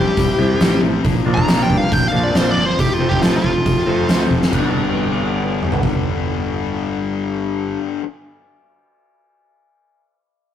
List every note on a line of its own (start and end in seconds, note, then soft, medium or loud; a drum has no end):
0.00 0.11 C2 medium
0.00 0.17 C3 medium
0.00 0.59 G3 medium
0.00 0.60 C4 medium
0.00 0.61 E4 medium
0.00 0.80 G4 medium
0.17 0.33 C2 medium
0.17 kick loud
0.17 open hi-hat medium
0.38 0.55 C2 medium
0.38 0.59 C3 medium
0.38 0.59 G3 medium
0.38 0.60 C4 medium
0.38 0.60 E4 medium
0.59 0.77 A1 medium
0.59 1.02 C3 medium
0.59 0.83 G3 medium
0.59 0.82 C4 medium
0.59 0.80 E4 medium
0.59 snare loud
0.59 open hi-hat medium
0.81 0.99 A1 medium
0.81 1.03 G3 medium
0.81 1.03 C4 medium
0.81 1.02 E4 medium
1.03 1.21 A#1 medium
1.03 1.46 A#2 medium
1.03 1.47 F3 medium
1.03 1.48 A#3 medium
1.03 1.49 D4 medium
1.03 kick loud
1.03 open hi-hat soft
1.26 1.42 A#1 medium
1.26 1.46 A#2 medium
1.26 1.46 F3 medium
1.26 1.47 A#3 medium
1.26 1.47 D4 medium
1.34 1.62 A#5 loud
1.34 kick medium
1.47 1.64 A#1 medium
1.47 1.91 A#2 medium
1.47 1.71 F3 medium
1.47 1.69 A#3 medium
1.47 1.68 D4 medium
1.47 snare loud
1.47 open hi-hat medium
1.63 1.77 G5 medium
1.69 1.86 G2 medium
1.69 2.34 F3 medium
1.69 2.35 A#3 medium
1.69 2.35 D4 medium
1.69 kick medium
1.77 1.93 F5 medium
1.92 2.08 A#1 medium
1.92 2.06 G5 medium
1.92 kick loud
1.92 open hi-hat soft
2.08 2.23 F5 medium
2.12 2.29 A#1 medium
2.12 2.33 A#2 medium
2.12 2.34 F3 medium
2.12 2.34 A#3 medium
2.12 2.34 D4 medium
2.23 2.37 D5 medium
2.34 2.51 A#1 medium
2.34 2.76 A#2 medium
2.34 2.57 F3 medium
2.34 2.56 A#3 medium
2.34 2.54 D4 medium
2.34 2.51 C5 medium
2.34 snare medium
2.34 open hi-hat soft
2.51 2.65 D5 medium
2.56 2.72 G1 medium
2.56 2.78 F3 medium
2.56 2.77 A#3 medium
2.56 2.76 D4 medium
2.65 2.78 C5 medium
2.78 3.11 F1 medium
2.78 3.20 F2 medium
2.78 3.21 C3 medium
2.78 3.21 F3 medium
2.78 3.21 A3 medium
2.78 3.23 C4 medium
2.78 2.93 G4 medium
2.78 kick loud
2.78 open hi-hat soft
2.93 3.09 F4 medium
2.99 3.20 C3 medium
2.99 3.21 F3 medium
2.99 3.21 A3 medium
2.99 3.21 C4 medium
3.09 3.22 G4 medium
3.09 kick medium
3.21 3.38 A1 medium
3.21 3.65 F2 medium
3.21 3.65 C3 medium
3.21 3.44 F3 medium
3.21 3.43 A3 medium
3.21 3.41 C4 medium
3.21 3.36 F4 medium
3.21 snare loud
3.21 open hi-hat medium
3.37 4.21 F4 medium
3.43 3.60 F1 medium
3.43 4.08 F3 medium
3.43 4.08 A3 medium
3.43 4.09 C4 medium
3.43 kick medium
3.66 3.82 F1 medium
3.66 kick loud
3.66 open hi-hat soft
3.87 4.03 F1 medium
3.87 4.07 C3 medium
3.87 4.08 F3 medium
3.87 4.08 A3 medium
3.87 4.08 C4 medium
4.08 4.25 D2 medium
4.08 4.50 C3 medium
4.08 4.31 F3 medium
4.08 4.30 A3 medium
4.08 4.28 C4 medium
4.08 snare loud
4.08 open hi-hat medium
4.29 4.47 F1 medium
4.29 4.52 F3 medium
4.29 4.51 A3 medium
4.29 4.50 C4 medium
4.29 kick medium
4.42 snare medium
4.51 7.76 G1 medium
4.51 8.01 G2 medium
4.51 8.02 D3 medium
4.51 8.03 G3 medium
4.51 8.04 B3 medium
4.51 8.05 D4 medium
4.51 kick medium
4.51 crash medium
4.55 8.05 G4 medium
5.62 mid tom soft
5.72 floor tom medium
5.83 kick medium